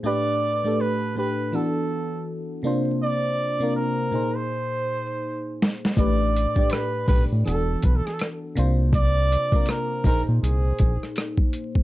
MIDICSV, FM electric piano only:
0, 0, Header, 1, 2, 480
1, 0, Start_track
1, 0, Tempo, 740741
1, 29, Time_signature, 4, 2, 24, 8
1, 7666, End_track
2, 0, Start_track
2, 0, Title_t, "FM electric piano"
2, 0, Program_c, 0, 5
2, 0, Control_c, 0, 64, 127
2, 20, Note_on_c, 0, 45, 72
2, 24, Note_on_c, 0, 57, 77
2, 31, Note_on_c, 0, 62, 76
2, 36, Control_c, 0, 64, 0
2, 38, Note_on_c, 0, 67, 76
2, 43, Note_on_c, 0, 71, 99
2, 135, Control_c, 0, 64, 127
2, 311, Note_off_c, 0, 45, 0
2, 313, Note_off_c, 0, 57, 0
2, 317, Note_off_c, 0, 62, 0
2, 321, Note_off_c, 0, 67, 0
2, 323, Note_off_c, 0, 71, 0
2, 413, Note_on_c, 0, 45, 61
2, 419, Note_on_c, 0, 57, 60
2, 425, Note_on_c, 0, 62, 65
2, 431, Note_on_c, 0, 67, 65
2, 436, Note_on_c, 0, 69, 69
2, 684, Note_off_c, 0, 45, 0
2, 687, Note_off_c, 0, 57, 0
2, 690, Note_off_c, 0, 62, 0
2, 693, Note_off_c, 0, 67, 0
2, 695, Note_off_c, 0, 69, 0
2, 748, Note_on_c, 0, 45, 60
2, 753, Note_on_c, 0, 57, 48
2, 761, Note_on_c, 0, 62, 52
2, 768, Note_on_c, 0, 67, 57
2, 773, Note_on_c, 0, 71, 70
2, 986, Note_on_c, 0, 52, 70
2, 988, Note_off_c, 0, 45, 0
2, 989, Note_off_c, 0, 62, 0
2, 991, Note_off_c, 0, 57, 0
2, 993, Note_on_c, 0, 59, 58
2, 997, Control_c, 0, 64, 0
2, 997, Note_on_c, 0, 62, 59
2, 998, Note_off_c, 0, 67, 0
2, 1000, Note_off_c, 0, 71, 0
2, 1003, Note_on_c, 0, 66, 60
2, 1011, Note_on_c, 0, 69, 71
2, 1115, Control_c, 0, 64, 127
2, 1583, Note_off_c, 0, 52, 0
2, 1586, Note_off_c, 0, 59, 0
2, 1588, Note_off_c, 0, 62, 0
2, 1591, Note_off_c, 0, 66, 0
2, 1595, Note_off_c, 0, 69, 0
2, 1703, Note_on_c, 0, 48, 77
2, 1710, Note_on_c, 0, 58, 74
2, 1717, Note_on_c, 0, 62, 85
2, 1718, Control_c, 0, 64, 0
2, 1723, Note_on_c, 0, 65, 69
2, 1728, Note_on_c, 0, 72, 97
2, 1824, Control_c, 0, 64, 127
2, 2186, Note_off_c, 0, 48, 0
2, 2189, Note_off_c, 0, 58, 0
2, 2192, Note_off_c, 0, 62, 0
2, 2195, Note_off_c, 0, 65, 0
2, 2198, Note_off_c, 0, 72, 0
2, 2332, Note_on_c, 0, 48, 64
2, 2337, Note_on_c, 0, 58, 60
2, 2341, Note_on_c, 0, 62, 63
2, 2350, Note_on_c, 0, 65, 60
2, 2355, Note_on_c, 0, 70, 74
2, 2664, Note_off_c, 0, 58, 0
2, 2665, Note_on_c, 0, 46, 69
2, 2668, Note_off_c, 0, 48, 0
2, 2671, Note_on_c, 0, 58, 58
2, 2673, Note_off_c, 0, 62, 0
2, 2677, Note_off_c, 0, 65, 0
2, 2678, Control_c, 0, 64, 0
2, 2679, Note_off_c, 0, 70, 0
2, 2679, Note_on_c, 0, 63, 56
2, 2684, Note_on_c, 0, 68, 54
2, 2691, Note_on_c, 0, 72, 75
2, 2798, Control_c, 0, 64, 127
2, 3444, Note_off_c, 0, 46, 0
2, 3448, Note_off_c, 0, 58, 0
2, 3452, Note_off_c, 0, 63, 0
2, 3454, Note_off_c, 0, 68, 0
2, 3457, Note_off_c, 0, 72, 0
2, 3865, Note_on_c, 0, 45, 88
2, 3871, Note_on_c, 0, 57, 71
2, 3876, Note_on_c, 0, 62, 74
2, 3877, Control_c, 0, 64, 0
2, 3883, Note_on_c, 0, 67, 70
2, 3889, Note_on_c, 0, 71, 83
2, 4001, Control_c, 0, 64, 127
2, 4154, Note_off_c, 0, 45, 0
2, 4157, Note_off_c, 0, 57, 0
2, 4159, Note_off_c, 0, 62, 0
2, 4163, Note_off_c, 0, 67, 0
2, 4166, Note_off_c, 0, 71, 0
2, 4248, Note_on_c, 0, 45, 58
2, 4255, Note_on_c, 0, 57, 53
2, 4259, Note_on_c, 0, 62, 60
2, 4266, Note_on_c, 0, 67, 62
2, 4270, Note_on_c, 0, 74, 72
2, 4521, Note_off_c, 0, 45, 0
2, 4525, Note_off_c, 0, 57, 0
2, 4527, Note_off_c, 0, 62, 0
2, 4531, Note_off_c, 0, 67, 0
2, 4533, Note_off_c, 0, 74, 0
2, 4584, Note_on_c, 0, 45, 57
2, 4589, Note_on_c, 0, 57, 49
2, 4594, Note_on_c, 0, 62, 53
2, 4601, Note_on_c, 0, 67, 54
2, 4607, Note_on_c, 0, 71, 63
2, 4824, Note_on_c, 0, 52, 64
2, 4826, Note_off_c, 0, 45, 0
2, 4828, Note_off_c, 0, 57, 0
2, 4828, Note_off_c, 0, 62, 0
2, 4831, Note_on_c, 0, 59, 58
2, 4835, Note_off_c, 0, 67, 0
2, 4836, Note_on_c, 0, 62, 64
2, 4837, Control_c, 0, 64, 0
2, 4838, Note_off_c, 0, 71, 0
2, 4843, Note_on_c, 0, 66, 55
2, 4848, Note_on_c, 0, 68, 51
2, 4889, Note_off_c, 0, 68, 0
2, 4891, Note_on_c, 0, 69, 76
2, 4954, Control_c, 0, 64, 127
2, 5422, Note_off_c, 0, 52, 0
2, 5425, Note_off_c, 0, 59, 0
2, 5428, Note_off_c, 0, 62, 0
2, 5431, Note_off_c, 0, 66, 0
2, 5455, Note_off_c, 0, 69, 0
2, 5543, Note_on_c, 0, 48, 92
2, 5550, Note_on_c, 0, 58, 72
2, 5556, Note_on_c, 0, 62, 78
2, 5558, Control_c, 0, 64, 0
2, 5564, Note_on_c, 0, 65, 73
2, 5567, Note_on_c, 0, 72, 85
2, 5675, Control_c, 0, 64, 127
2, 6026, Note_off_c, 0, 48, 0
2, 6029, Note_off_c, 0, 58, 0
2, 6032, Note_off_c, 0, 62, 0
2, 6036, Note_off_c, 0, 65, 0
2, 6038, Note_off_c, 0, 72, 0
2, 6170, Note_on_c, 0, 48, 60
2, 6175, Note_on_c, 0, 58, 60
2, 6181, Note_on_c, 0, 62, 58
2, 6187, Note_on_c, 0, 65, 53
2, 6193, Note_on_c, 0, 70, 64
2, 6501, Note_off_c, 0, 58, 0
2, 6504, Note_on_c, 0, 46, 68
2, 6507, Note_off_c, 0, 48, 0
2, 6509, Note_on_c, 0, 58, 63
2, 6512, Note_off_c, 0, 62, 0
2, 6515, Note_off_c, 0, 65, 0
2, 6515, Note_on_c, 0, 63, 66
2, 6518, Note_off_c, 0, 70, 0
2, 6518, Control_c, 0, 64, 0
2, 6521, Note_on_c, 0, 68, 65
2, 6528, Note_on_c, 0, 72, 75
2, 6624, Control_c, 0, 64, 127
2, 7284, Note_off_c, 0, 46, 0
2, 7286, Note_off_c, 0, 58, 0
2, 7289, Note_off_c, 0, 63, 0
2, 7293, Note_off_c, 0, 68, 0
2, 7296, Note_off_c, 0, 72, 0
2, 7666, End_track
0, 0, End_of_file